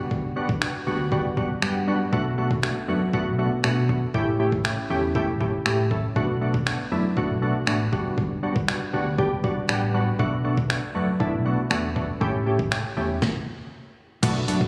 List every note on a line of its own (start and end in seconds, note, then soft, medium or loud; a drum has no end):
0.00 0.66 G1 medium
0.00 0.26 G3 medium
0.00 0.26 B3 medium
0.00 0.26 D4 medium
0.00 0.26 F#4 medium
0.11 kick loud
0.36 0.48 G3 medium
0.36 0.48 B3 medium
0.36 0.48 D4 medium
0.36 0.48 F#4 medium
0.49 kick loud
0.61 0.73 G3 medium
0.61 0.73 B3 medium
0.61 0.73 D4 medium
0.61 0.73 F#4 medium
0.61 finger snap loud
0.86 1.26 D2 medium
0.86 0.98 G3 medium
0.86 0.98 B3 medium
0.86 0.98 D4 medium
0.86 0.98 F#4 medium
1.12 1.23 G3 loud
1.12 1.23 B3 loud
1.12 1.23 D4 loud
1.12 1.23 F#4 loud
1.12 kick medium
1.25 1.45 G1 medium
1.37 1.48 G3 medium
1.37 1.49 B3 medium
1.37 1.49 D4 medium
1.37 1.49 F#4 medium
1.37 kick medium
1.62 2.02 G2 medium
1.62 1.74 G3 medium
1.62 1.74 B3 medium
1.62 1.74 D4 medium
1.62 1.74 G4 medium
1.62 2.09 F#5 medium
1.62 finger snap loud
1.87 1.99 G3 medium
1.87 1.99 B3 medium
1.87 1.99 D4 medium
1.87 1.99 F#4 medium
2.12 2.73 B1 medium
2.12 2.24 A3 loud
2.12 2.24 B3 loud
2.12 2.24 D4 loud
2.12 2.24 F#4 loud
2.12 kick loud
2.38 2.49 A3 medium
2.38 2.49 B3 medium
2.38 2.49 D4 medium
2.38 2.50 F#4 medium
2.51 kick loud
2.63 2.74 A3 medium
2.63 2.75 B3 medium
2.63 2.75 D4 medium
2.63 2.75 F#4 medium
2.63 finger snap loud
2.88 3.28 F#2 medium
2.88 3.00 A3 medium
2.88 3.00 B3 medium
2.88 3.00 D4 medium
2.88 3.00 F#4 medium
3.13 3.25 A3 loud
3.13 3.25 B3 loud
3.13 3.25 D4 loud
3.13 3.25 F#4 loud
3.13 kick medium
3.26 3.46 B1 medium
3.39 3.50 A3 medium
3.39 3.50 B3 medium
3.39 3.50 D4 medium
3.39 3.50 F#4 medium
3.64 4.04 B2 medium
3.64 3.75 A3 medium
3.64 3.75 B3 medium
3.64 3.75 D4 medium
3.64 3.75 F#4 medium
3.64 finger snap loud
3.89 4.01 A3 medium
3.89 4.01 B3 medium
3.89 4.01 D4 medium
3.89 4.01 F#4 medium
3.89 kick medium
4.14 4.74 A1 medium
4.14 4.26 A3 loud
4.14 4.26 C#4 loud
4.14 4.26 E4 loud
4.14 4.26 G4 loud
4.14 kick loud
4.39 4.51 A3 medium
4.39 4.51 C#4 medium
4.39 4.51 E4 medium
4.39 4.51 G4 medium
4.52 kick loud
4.65 4.76 A3 medium
4.65 4.76 C#4 medium
4.65 4.76 E4 medium
4.65 4.76 G4 medium
4.65 finger snap loud
4.90 5.29 E2 medium
4.90 5.01 A3 medium
4.90 5.02 C#4 medium
4.90 5.02 E4 medium
4.90 5.02 G4 medium
5.15 5.27 A3 loud
5.15 5.27 C#4 loud
5.15 5.27 E4 loud
5.15 5.27 G4 loud
5.15 kick medium
5.28 5.48 A1 medium
5.40 5.52 A3 medium
5.40 5.52 C#4 medium
5.40 5.52 E4 medium
5.40 5.52 G4 medium
5.40 kick medium
5.66 6.06 A2 medium
5.66 5.77 A3 medium
5.66 5.77 C#4 medium
5.66 5.77 E4 medium
5.66 5.77 G4 medium
5.66 finger snap loud
5.91 6.02 A3 medium
5.91 6.02 C#4 medium
5.91 6.02 E4 medium
5.91 6.02 A4 medium
5.91 kick medium
6.16 6.76 B1 medium
6.16 6.27 A3 loud
6.16 6.27 B3 loud
6.16 6.28 D4 medium
6.16 6.28 F#4 loud
6.16 kick loud
6.41 6.53 A3 medium
6.41 6.53 B3 medium
6.41 6.53 D4 medium
6.41 6.53 F#4 medium
6.54 kick loud
6.66 6.78 A3 medium
6.66 6.78 B3 medium
6.66 6.78 D4 medium
6.66 6.78 F#4 medium
6.66 finger snap loud
6.91 7.31 F#2 medium
6.91 7.03 A3 medium
6.91 7.03 B3 medium
6.91 7.03 D4 medium
6.91 7.03 E4 medium
7.17 7.28 A3 loud
7.17 7.28 B3 loud
7.17 7.28 D4 medium
7.17 7.28 F#4 loud
7.17 kick medium
7.29 7.50 B1 medium
7.42 7.53 A3 medium
7.42 7.54 B3 medium
7.42 7.54 D4 medium
7.42 7.54 F#4 medium
7.67 7.87 A1 medium
7.67 7.79 A3 medium
7.67 7.79 B3 medium
7.67 7.79 D4 medium
7.67 7.79 F#4 medium
7.67 finger snap loud
7.92 8.73 G1 loud
7.92 8.33 G3 medium
7.92 8.33 B3 medium
7.92 8.33 D4 medium
7.92 8.33 F#4 medium
7.92 kick medium
8.18 kick loud
8.43 8.54 G3 medium
8.43 8.54 B3 medium
8.43 8.54 D4 medium
8.43 8.55 F#4 medium
8.56 kick loud
8.68 8.79 G3 medium
8.68 8.80 B3 medium
8.68 8.80 D4 medium
8.68 8.80 F#4 medium
8.68 finger snap loud
8.93 9.33 D2 medium
8.93 9.05 G3 medium
8.93 9.05 B3 medium
8.93 9.05 D4 medium
8.93 9.05 F#4 medium
9.18 9.30 G3 loud
9.18 9.30 B3 loud
9.18 9.30 D4 loud
9.18 9.30 G4 loud
9.18 kick medium
9.31 9.51 G1 medium
9.43 9.55 G3 medium
9.43 9.55 B3 medium
9.43 9.55 D4 medium
9.43 9.55 F#4 loud
9.43 9.67 D5 medium
9.43 kick medium
9.69 10.09 A1 medium
9.69 9.80 G3 medium
9.69 9.80 B3 medium
9.69 9.81 D4 medium
9.69 9.81 G4 medium
9.69 10.16 F#5 medium
9.69 finger snap loud
9.94 10.06 G3 medium
9.94 10.06 B3 medium
9.94 10.06 D4 medium
9.94 10.06 F#4 medium
10.19 10.79 B1 medium
10.19 10.31 A3 loud
10.19 10.31 B3 loud
10.19 10.31 D4 loud
10.19 10.31 F#4 loud
10.19 kick loud
10.44 10.56 A3 medium
10.44 10.56 B3 medium
10.44 10.56 D4 medium
10.44 10.56 F#4 medium
10.57 kick loud
10.69 10.81 A3 medium
10.69 10.81 B3 medium
10.69 10.81 D4 medium
10.69 10.81 F#4 medium
10.69 finger snap loud
10.95 11.35 F#2 loud
10.95 11.06 A3 medium
10.95 11.06 B3 medium
10.95 11.06 D4 medium
10.95 11.07 F#4 medium
11.20 11.31 A3 loud
11.20 11.32 B3 loud
11.20 11.32 D4 loud
11.20 11.32 E4 loud
11.20 kick medium
11.33 11.53 B1 medium
11.45 11.57 A3 medium
11.45 11.57 B3 medium
11.45 11.57 D4 medium
11.45 11.57 F#4 medium
11.70 12.11 E2 medium
11.70 11.82 A3 medium
11.70 11.82 B3 medium
11.70 11.82 D4 medium
11.70 11.82 F#4 medium
11.70 finger snap loud
11.96 12.07 A3 medium
11.96 12.07 B3 medium
11.96 12.07 D4 medium
11.96 12.07 F#4 medium
11.96 kick medium
12.21 12.81 A1 medium
12.21 12.32 A3 loud
12.21 12.32 C#4 loud
12.21 12.33 E4 loud
12.21 12.33 G4 loud
12.21 kick loud
12.46 12.58 A3 medium
12.46 12.58 C#4 medium
12.46 12.58 E4 medium
12.46 12.58 G4 medium
12.59 kick loud
12.71 12.83 A3 medium
12.71 12.83 C#4 medium
12.71 12.83 E4 medium
12.71 12.83 G4 medium
12.71 finger snap loud
12.96 13.17 E2 medium
12.96 13.08 A3 medium
12.96 13.08 C#4 medium
12.96 13.08 E4 medium
12.96 13.08 G4 medium
13.22 kick loud
13.22 snare medium
14.23 14.43 B1 loud
14.23 14.34 A3 loud
14.23 14.34 B3 loud
14.23 14.34 D4 loud
14.23 14.34 F#4 loud
14.23 kick loud
14.23 closed hi-hat medium
14.23 crash medium
14.48 14.68 F#2 medium
14.48 14.59 A3 medium
14.48 14.59 B3 medium
14.48 14.59 D4 medium
14.48 14.60 F#4 medium
14.48 closed hi-hat medium
14.61 kick loud